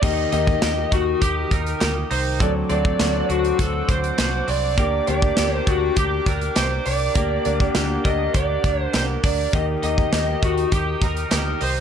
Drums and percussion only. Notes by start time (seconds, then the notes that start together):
0.03 kick, crash
0.32 closed hi-hat
0.47 kick
0.62 snare, clap, closed hi-hat, tambourine
0.92 kick, closed hi-hat
1.22 kick, closed hi-hat
1.51 kick, closed hi-hat
1.67 closed hi-hat
1.81 snare, clap, closed hi-hat, tambourine
2.11 open hi-hat
2.40 kick, closed hi-hat
2.70 closed hi-hat
2.85 kick
3.00 snare, clap, closed hi-hat, tambourine
3.30 closed hi-hat
3.45 closed hi-hat
3.59 kick, closed hi-hat
3.89 kick, closed hi-hat
4.04 closed hi-hat
4.18 snare, clap, closed hi-hat, tambourine
4.48 open hi-hat
4.78 kick, closed hi-hat
5.07 closed hi-hat
5.22 kick
5.37 snare, clap, closed hi-hat, tambourine
5.67 kick, closed hi-hat
5.96 kick, closed hi-hat
6.26 kick, closed hi-hat
6.41 closed hi-hat
6.56 snare, clap, closed hi-hat, tambourine
6.86 open hi-hat
7.15 kick, closed hi-hat
7.45 closed hi-hat
7.60 kick
7.75 snare, clap, closed hi-hat, tambourine
8.05 kick, closed hi-hat
8.34 kick, closed hi-hat
8.64 kick, closed hi-hat
8.93 snare, clap, closed hi-hat, tambourine
9.23 kick, open hi-hat
9.53 kick, closed hi-hat
9.83 closed hi-hat
9.98 kick
10.13 snare, clap, closed hi-hat, tambourine
10.43 kick, closed hi-hat
10.58 closed hi-hat
10.72 kick, closed hi-hat
11.02 kick, closed hi-hat
11.17 closed hi-hat
11.31 snare, clap, closed hi-hat, tambourine
11.61 open hi-hat